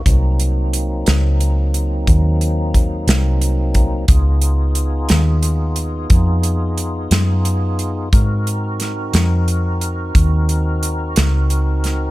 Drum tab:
HH |xxxxxxxxxxxx|xxxxxxxxxxxx|xxxxxxxxxxxx|
SD |---o-----o--|---o-----o--|--oo-----o-o|
BD |o-----o-o--o|o-----o-----|o-----o-----|